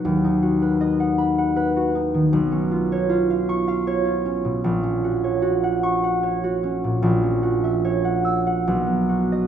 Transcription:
\new Staff \with { instrumentName = "Harp" } { \time 3/4 \key fis \major \tempo 4 = 77 << { b''4. b''4.~ | b''4. cis'''4.~ | cis'''4. cis'''4.~ | cis'''4. e'''8 r8. dis''16 | } \\ { <dis, fis dis' fis' b' dis'' fis''>16 dis'16 fis'16 b'16 dis''16 fis''8 fis''16 b'16 fis'16 dis'16 dis16 | b,,16 cis'16 eis'16 cis''16 eis'16 eis''8 eis''16 cis''16 eis'16 cis'16 b,16 | ais,,16 cis'16 fis'16 cis''16 fis'16 fis''8 fis''16 cis''16 fis'16 cis'16 ais,16 | ais,,16 cis'16 fis'16 e''16 cis''16 fis''8 fis''16 b,,16 b16 fis'8 | } >> }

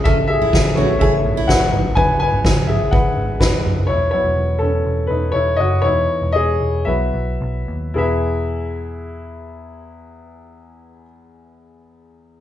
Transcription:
<<
  \new Staff \with { instrumentName = "Upright piano" } { \time 4/4 \key e \major \tempo 4 = 119 <a' e''>8 <gis' e''>4 <e' cis''>8 <a' e''>8 r8 <b' fis''>4 | <b' gis''>8 <b' gis''>4 <gis' e''>8 <b' fis''>8 r8 <dis' b'>4 | <e' cis''>8 cis''4 <cis' a'>4 <dis' b'>8 <e' cis''>8 <fis' dis''>8 | <e' cis''>4 <gis' dis''>4 <b' e''>4. r8 |
<e' gis' b' e''>1~ | <e' gis' b' e''>1 | }
  \new Staff \with { instrumentName = "Upright piano" } { \time 4/4 \key e \major r4. <a b cis'>4. r8 <fis b dis'>8~ | <fis b dis'>2.~ <fis b dis'>8 r8 | r8 <fis b e'>4. r2 | <e b dis'>4. r8 <fis b e'>2 |
e,1~ | e,1 | }
  \new Staff \with { instrumentName = "Steel-string acoustic guitar" } { \time 4/4 \key e \major cis'16 r8 e'8 r16 fis'16 r16 gis'16 r8 e'8 r8. | r1 | r1 | r1 |
r1 | r1 | }
  \new Staff \with { instrumentName = "Picked electric bass" } { \clef bass \time 4/4 \key e \major a,,8 r16 a,,16 a,,8 a,,8 a,,8 a,,8 a,,8 gis,,8~ | gis,,8 r16 gis,,16 gis,,8 gis,,8 gis,,8 gis,,8 gis,,8 fis,,8 | e,,8 r16 e,,16 e,,8 e,,8 e,,8 e,,8 e,,8 fis,,8 | e,,8 r16 e,,16 e,,8 e,,8 b,,8 b,,8 b,,8 dis,8 |
e,,1~ | e,,1 | }
  \new DrumStaff \with { instrumentName = "Drums" } \drummode { \time 4/4 <bd cymr>8 <cymr tomfh>16 cymr16 <bd cymr sn>8 <cymr tomfh>16 cymr16 <bd cymr>8 <cymr tomfh>8 <bd cymr sn>8 <cymr tomfh>8 | <bd cymr>8 <cymr tomfh>8 <bd cymr sn>8 <cymr tomfh>8 <bd cymr>8 cymr8 <bd cymr sn>8 <cymr tomfh>8 | r4 r4 r4 r4 | r4 r4 r4 r4 |
r4 r4 r4 r4 | r4 r4 r4 r4 | }
>>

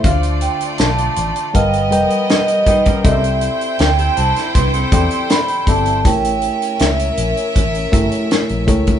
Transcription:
<<
  \new Staff \with { instrumentName = "Vibraphone" } { \time 4/4 \key a \minor \tempo 4 = 80 f''8 g''8 a''4 g''4 dis''8. r16 | e''4 g''8 a''8 c'''8 c'''8 b''8 a''8 | g''4 e''2 r4 | }
  \new Staff \with { instrumentName = "Violin section" } { \time 4/4 \key a \minor <a f' d''>2 <b ais' dis''>2 | <e' c'' g''>1 | <cis' bes' e''>1 | }
  \new Staff \with { instrumentName = "Reed electric piano" } { \time 4/4 \key a \minor <d d' f' c'' f''>4.~ <d d' f' c'' f''>16 r16 <g g' ais' b' dis'' f''>8 <g g' ais' b' dis'' g''>4 <g g' ais' b' dis'' g''>8 | <c' g' a' d'' dis'' e''>4.~ <c' g' a' d'' dis'' e''>16 r8. <c' g' a' d'' g''>4 <c' g' a' d'' e''>8 | <a e' g' bes' cis''>4.~ <a e' g' bes' cis''>16 r8. <a e' g' bes' e''>4 <a e' g' bes' cis''>8 | }
  \new Staff \with { instrumentName = "Clean electric guitar" } { \time 4/4 \key a \minor r2. <g' dis''>8 <dis' b'>16 <cis' ais'>16~ | <cis' ais'>16 r4 <g' e''>16 <e' c''>8 <d' b'>16 <c' a'>4. r16 | r1 | }
  \new Staff \with { instrumentName = "Fingered electric bass" } { \clef bass \time 4/4 \key a \minor d,8. r16 b,,8 a,,16 r16 g,,8 f,,16 r4 r16 | c,8. r16 d,8 c,16 r16 c,8 e,16 r8. g,,8 | a,,8. r16 cis,8 bes,,16 r16 a,,8 g,,16 r8 bes,,16 cis,8 | }
  \new DrumStaff \with { instrumentName = "Drums" } \drummode { \time 4/4 <hh bd>16 hh16 hh16 hh16 <hh sn>16 hh16 hh16 hh16 <hh bd>16 hh16 hh16 hh16 <hh sn>16 hh16 <hh bd>16 <hh bd>16 | <hh bd>16 hh16 hh16 hh16 <hh sn>16 hh16 hh16 <hh sn>16 <hh bd>16 hh16 <hh bd>16 hh16 <hh sn>16 hh16 <hh bd>16 hh16 | <hh bd>16 hh16 hh16 hh16 <hh sn>16 hh16 hh16 hh16 <hh bd>16 hh16 <hh bd>16 hh16 <hh sn>16 hh16 <hh bd>16 <hh bd>16 | }
>>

